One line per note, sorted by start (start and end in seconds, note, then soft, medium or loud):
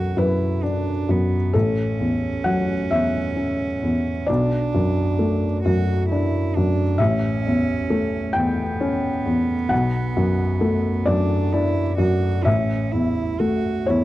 0.00 1.50 B1 soft
0.00 0.17 F#2 soft
0.00 0.45 F#3 soft
0.00 0.19 F#4 soft
0.00 0.14 A4 soft
0.17 0.90 F#2 soft
0.17 0.64 E4 soft
0.17 0.60 B4 soft
0.63 1.12 D4 soft
0.63 1.36 D4 soft
1.09 1.54 F#2 soft
1.09 1.56 B3 soft
1.53 4.25 A1 soft
1.53 4.30 C#4 soft
1.53 2.41 A4 soft
2.00 2.72 E2 soft
2.44 3.18 F#3 soft
2.44 2.87 F#5 medium
2.91 3.64 E2 soft
2.91 4.24 E5 medium
3.36 4.10 C#4 soft
3.83 4.28 E2 soft
4.27 6.95 B1 soft
4.27 5.63 D4 soft
4.27 6.94 D5 medium
4.74 5.46 F#2 soft
5.19 5.91 A3 soft
5.64 6.37 F#2 soft
5.64 6.08 F#4 soft
6.10 6.82 D4 soft
6.10 6.58 E4 soft
6.56 7.00 F#2 soft
6.56 7.01 D4 medium
6.98 9.68 A1 soft
6.98 8.36 C#4 medium
6.98 8.30 E5 medium
7.46 8.18 E2 soft
7.90 8.63 A3 soft
8.33 9.09 E2 soft
8.33 11.08 B3 medium
8.33 9.67 G5 medium
8.81 9.53 C#4 soft
9.25 9.71 E2 soft
9.69 12.42 B1 medium
9.69 11.03 F#5 medium
10.17 10.90 F#2 soft
10.61 11.35 A3 soft
11.06 11.80 F#2 soft
11.06 11.54 D4 soft
11.06 12.41 D5 medium
11.53 12.27 D4 soft
11.53 11.98 E4 medium
11.98 12.45 F#2 soft
11.98 12.46 F#4 medium
12.44 14.04 A1 soft
12.44 12.93 C#4 soft
12.44 13.84 E5 medium
12.92 13.69 E2 soft
12.92 13.42 E4 soft
13.40 14.04 A3 soft
13.40 13.91 F#4 soft
13.86 14.04 E2 soft
13.86 14.04 E4 soft
13.86 14.04 C#5 medium